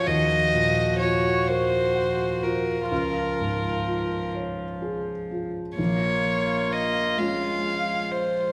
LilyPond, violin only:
\new Staff \with { instrumentName = "Violin" } { \time 6/8 \key bes \minor \tempo 4. = 42 ees''4 des''8 c''4 bes'8 | bes'4. r4. | des''4 ees''8 f''4 c''8 | }